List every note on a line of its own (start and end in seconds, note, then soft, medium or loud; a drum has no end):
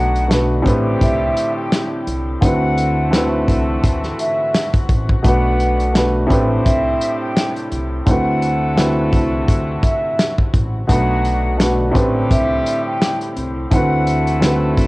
0.00 0.62 B1 loud
0.00 0.28 B2 medium
0.00 2.39 D3 medium
0.00 0.29 F#3 medium
0.00 0.29 A3 medium
0.00 0.65 A3 medium
0.00 0.29 B3 medium
0.00 0.29 D4 medium
0.00 0.30 D4 medium
0.00 0.29 F#4 medium
0.00 0.31 F#4 medium
0.00 0.65 F#4 medium
0.00 0.33 B4 medium
0.00 0.45 F#5 loud
0.15 closed hi-hat medium
0.28 0.64 B2 medium
0.28 0.61 A3 medium
0.28 0.63 D4 medium
0.28 0.66 F#4 medium
0.28 snare loud
0.28 closed hi-hat loud
0.33 0.65 B4 medium
0.62 0.93 A1 loud
0.62 1.78 A2 loud
0.62 2.04 G3 medium
0.62 1.78 A3 medium
0.62 1.79 C4 medium
0.62 1.79 D4 medium
0.62 2.04 D4 medium
0.62 2.04 E4 medium
0.62 1.80 G4 medium
0.62 2.04 G4 loud
0.62 kick medium
0.66 5.21 C4 medium
0.66 2.41 G4 medium
0.66 1.80 B4 loud
0.66 closed hi-hat medium
1.01 1.29 C2 medium
1.01 1.52 E5 medium
1.01 kick loud
1.01 closed hi-hat medium
1.37 closed hi-hat medium
1.56 1.88 G5 medium
1.72 snare loud
1.72 closed hi-hat medium
2.07 2.34 C2 medium
2.07 closed hi-hat medium
2.41 3.44 D2 loud
2.41 2.89 D3 medium
2.41 5.22 E3 medium
2.41 2.89 A3 medium
2.41 4.85 A3 medium
2.41 2.90 C4 medium
2.41 4.85 E4 medium
2.41 2.90 E4 medium
2.41 6.26 F#4 medium
2.41 4.85 F#4 medium
2.41 2.91 F#4 medium
2.41 4.85 A4 loud
2.41 3.28 F#5 loud
2.41 kick loud
2.41 closed hi-hat medium
2.46 2.91 B4 medium
2.78 closed hi-hat medium
3.10 4.05 D3 medium
3.10 4.06 A3 medium
3.10 4.06 C4 medium
3.10 4.07 E4 medium
3.10 4.07 F#4 medium
3.10 snare loud
3.10 closed hi-hat loud
3.15 4.08 B4 medium
3.48 3.75 C2 medium
3.48 kick medium
3.48 closed hi-hat medium
3.84 4.11 D2 medium
3.84 kick loud
3.84 closed hi-hat medium
4.03 snare soft
4.19 4.71 E5 medium
4.19 closed hi-hat medium
4.54 snare loud
4.54 closed hi-hat medium
4.74 kick loud
4.74 closed hi-hat soft
4.89 5.16 A1 medium
4.89 kick loud
4.89 closed hi-hat medium
5.09 kick loud
5.23 6.26 B1 loud
5.23 5.71 B2 medium
5.23 6.29 D3 medium
5.23 5.71 A3 medium
5.23 6.29 A3 medium
5.23 5.94 B3 medium
5.23 5.72 D4 medium
5.23 5.94 D4 medium
5.23 5.94 F#4 medium
5.23 5.73 F#4 medium
5.23 5.94 B4 medium
5.23 6.12 F#5 loud
5.23 kick loud
5.23 closed hi-hat medium
5.27 5.73 B4 medium
5.60 closed hi-hat medium
5.80 closed hi-hat medium
5.92 6.29 B2 medium
5.92 6.26 A3 medium
5.92 6.28 D4 medium
5.92 6.31 F#4 medium
5.92 snare loud
5.92 closed hi-hat loud
5.97 6.30 B4 medium
6.27 6.58 A1 loud
6.27 7.42 A2 loud
6.27 10.85 C3 medium
6.27 7.43 A3 medium
6.27 7.43 C4 medium
6.27 7.69 C4 medium
6.27 7.44 D4 medium
6.27 8.05 D4 medium
6.27 7.69 E4 medium
6.27 7.69 G4 medium
6.27 8.05 G4 medium
6.27 7.44 G4 medium
6.27 7.69 C5 loud
6.27 kick medium
6.31 7.45 B4 loud
6.31 closed hi-hat medium
6.63 6.93 C2 loud
6.63 7.16 E5 medium
6.63 kick loud
6.63 closed hi-hat medium
7.01 closed hi-hat medium
7.21 7.52 G5 medium
7.37 snare loud
7.37 closed hi-hat medium
7.56 closed hi-hat soft
7.72 7.99 C2 medium
7.72 closed hi-hat medium
8.06 9.09 D2 loud
8.06 8.54 D3 medium
8.06 10.49 A3 medium
8.06 8.54 A3 medium
8.06 8.55 C4 medium
8.06 10.49 E4 medium
8.06 10.86 E4 medium
8.06 8.55 E4 medium
8.06 10.49 F#4 medium
8.06 10.86 F#4 medium
8.06 8.56 F#4 medium
8.06 10.49 A4 loud
8.06 8.94 F#5 loud
8.06 kick loud
8.06 closed hi-hat medium
8.11 8.56 B4 medium
8.42 closed hi-hat medium
8.75 9.70 D3 medium
8.75 9.71 A3 medium
8.75 9.71 C4 medium
8.75 9.72 E4 medium
8.75 9.72 F#4 medium
8.75 snare loud
8.75 closed hi-hat loud
8.80 9.72 B4 medium
9.13 9.40 C2 medium
9.13 kick medium
9.13 closed hi-hat medium
9.48 9.76 D2 medium
9.48 kick loud
9.48 closed hi-hat medium
9.82 10.34 E5 medium
9.82 kick loud
9.82 closed hi-hat medium
10.19 snare loud
10.19 closed hi-hat medium
10.38 kick loud
10.54 10.81 A1 medium
10.54 kick loud
10.54 closed hi-hat medium
10.87 11.91 B1 loud
10.87 11.36 B2 medium
10.87 13.69 D3 medium
10.87 11.58 F#3 medium
10.87 11.36 A3 medium
10.87 11.94 A3 medium
10.87 11.58 B3 medium
10.87 11.58 D4 medium
10.87 11.37 D4 medium
10.87 11.58 F#4 medium
10.87 11.94 F#4 medium
10.87 11.37 F#4 medium
10.87 11.75 F#5 loud
10.87 kick loud
10.87 closed hi-hat medium
10.92 11.38 B4 medium
11.25 closed hi-hat medium
11.57 11.94 B2 medium
11.57 11.91 A3 medium
11.57 11.93 D4 medium
11.57 11.96 F#4 medium
11.57 snare loud
11.57 closed hi-hat loud
11.62 11.95 B4 medium
11.91 12.22 A1 loud
11.91 13.07 A2 loud
11.91 13.34 G3 loud
11.91 13.07 A3 medium
11.91 13.08 C4 medium
11.91 13.08 D4 medium
11.91 13.34 D4 medium
11.91 13.34 E4 medium
11.91 13.09 G4 medium
11.91 13.34 G4 loud
11.91 kick medium
11.96 14.87 C4 medium
11.96 13.70 G4 medium
11.96 13.09 B4 loud
11.96 closed hi-hat medium
12.30 12.58 C2 loud
12.30 12.82 E5 medium
12.30 kick loud
12.30 closed hi-hat medium
12.66 closed hi-hat medium
12.86 13.17 G5 medium
13.02 snare loud
13.02 closed hi-hat medium
13.21 closed hi-hat soft
13.37 13.64 C2 medium
13.37 closed hi-hat medium
13.71 14.74 D2 loud
13.71 14.18 D3 medium
13.71 14.87 E3 medium
13.71 14.87 A3 medium
13.71 14.19 A3 medium
13.71 14.19 C4 medium
13.71 14.87 E4 medium
13.71 14.20 E4 medium
13.71 14.87 F#4 medium
13.71 14.20 F#4 medium
13.71 14.87 A4 loud
13.71 14.57 F#5 loud
13.71 kick loud
13.71 closed hi-hat medium
13.75 14.21 B4 medium
14.07 closed hi-hat medium
14.27 closed hi-hat medium
14.40 14.87 D3 medium
14.40 14.87 A3 medium
14.40 14.87 C4 medium
14.40 14.87 E4 medium
14.40 14.87 F#4 medium
14.40 snare loud
14.40 closed hi-hat loud
14.45 14.87 B4 medium
14.77 14.87 C2 medium
14.77 kick medium
14.77 closed hi-hat medium